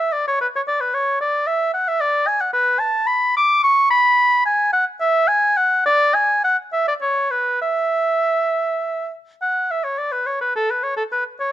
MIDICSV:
0, 0, Header, 1, 2, 480
1, 0, Start_track
1, 0, Tempo, 542986
1, 821, Time_signature, 3, 2, 24, 8
1, 4657, Tempo, 578592
1, 6097, Tempo, 603015
1, 8017, Tempo, 563380
1, 9811, End_track
2, 0, Start_track
2, 0, Title_t, "Oboe"
2, 0, Program_c, 0, 68
2, 0, Note_on_c, 0, 76, 65
2, 111, Note_on_c, 0, 74, 72
2, 124, Note_off_c, 0, 76, 0
2, 227, Note_off_c, 0, 74, 0
2, 242, Note_on_c, 0, 73, 73
2, 351, Note_off_c, 0, 73, 0
2, 363, Note_on_c, 0, 71, 72
2, 413, Note_off_c, 0, 71, 0
2, 493, Note_on_c, 0, 73, 65
2, 541, Note_off_c, 0, 73, 0
2, 599, Note_on_c, 0, 74, 74
2, 714, Note_on_c, 0, 71, 65
2, 727, Note_off_c, 0, 74, 0
2, 833, Note_on_c, 0, 73, 79
2, 846, Note_off_c, 0, 71, 0
2, 1062, Note_off_c, 0, 73, 0
2, 1067, Note_on_c, 0, 74, 72
2, 1302, Note_on_c, 0, 76, 73
2, 1316, Note_off_c, 0, 74, 0
2, 1531, Note_off_c, 0, 76, 0
2, 1537, Note_on_c, 0, 78, 74
2, 1662, Note_on_c, 0, 76, 84
2, 1675, Note_off_c, 0, 78, 0
2, 1775, Note_on_c, 0, 74, 88
2, 1788, Note_off_c, 0, 76, 0
2, 2008, Note_on_c, 0, 80, 88
2, 2021, Note_off_c, 0, 74, 0
2, 2131, Note_on_c, 0, 78, 59
2, 2144, Note_off_c, 0, 80, 0
2, 2230, Note_off_c, 0, 78, 0
2, 2236, Note_on_c, 0, 71, 93
2, 2470, Note_on_c, 0, 81, 86
2, 2483, Note_off_c, 0, 71, 0
2, 2713, Note_on_c, 0, 83, 96
2, 2726, Note_off_c, 0, 81, 0
2, 2963, Note_off_c, 0, 83, 0
2, 2975, Note_on_c, 0, 86, 100
2, 3206, Note_off_c, 0, 86, 0
2, 3211, Note_on_c, 0, 85, 107
2, 3448, Note_off_c, 0, 85, 0
2, 3453, Note_on_c, 0, 83, 105
2, 3928, Note_off_c, 0, 83, 0
2, 3938, Note_on_c, 0, 80, 98
2, 4172, Note_off_c, 0, 80, 0
2, 4179, Note_on_c, 0, 78, 85
2, 4286, Note_off_c, 0, 78, 0
2, 4426, Note_on_c, 0, 76, 98
2, 4666, Note_on_c, 0, 80, 109
2, 4678, Note_off_c, 0, 76, 0
2, 4910, Note_on_c, 0, 78, 96
2, 4923, Note_off_c, 0, 80, 0
2, 5142, Note_off_c, 0, 78, 0
2, 5147, Note_on_c, 0, 74, 115
2, 5382, Note_on_c, 0, 80, 100
2, 5394, Note_off_c, 0, 74, 0
2, 5622, Note_off_c, 0, 80, 0
2, 5629, Note_on_c, 0, 78, 84
2, 5734, Note_off_c, 0, 78, 0
2, 5866, Note_on_c, 0, 76, 82
2, 5979, Note_off_c, 0, 76, 0
2, 5993, Note_on_c, 0, 74, 78
2, 6044, Note_off_c, 0, 74, 0
2, 6108, Note_on_c, 0, 73, 83
2, 6338, Note_on_c, 0, 71, 80
2, 6350, Note_off_c, 0, 73, 0
2, 6580, Note_off_c, 0, 71, 0
2, 6584, Note_on_c, 0, 76, 83
2, 7757, Note_off_c, 0, 76, 0
2, 8017, Note_on_c, 0, 78, 74
2, 8266, Note_on_c, 0, 76, 61
2, 8279, Note_off_c, 0, 78, 0
2, 8378, Note_on_c, 0, 73, 56
2, 8391, Note_off_c, 0, 76, 0
2, 8502, Note_on_c, 0, 74, 62
2, 8514, Note_off_c, 0, 73, 0
2, 8616, Note_on_c, 0, 71, 65
2, 8629, Note_off_c, 0, 74, 0
2, 8739, Note_on_c, 0, 73, 58
2, 8752, Note_off_c, 0, 71, 0
2, 8858, Note_off_c, 0, 73, 0
2, 8863, Note_on_c, 0, 71, 65
2, 8980, Note_off_c, 0, 71, 0
2, 8990, Note_on_c, 0, 69, 71
2, 9115, Note_on_c, 0, 71, 60
2, 9128, Note_off_c, 0, 69, 0
2, 9225, Note_on_c, 0, 73, 64
2, 9238, Note_off_c, 0, 71, 0
2, 9336, Note_off_c, 0, 73, 0
2, 9341, Note_on_c, 0, 69, 57
2, 9394, Note_off_c, 0, 69, 0
2, 9468, Note_on_c, 0, 71, 65
2, 9573, Note_off_c, 0, 71, 0
2, 9704, Note_on_c, 0, 73, 65
2, 9811, Note_off_c, 0, 73, 0
2, 9811, End_track
0, 0, End_of_file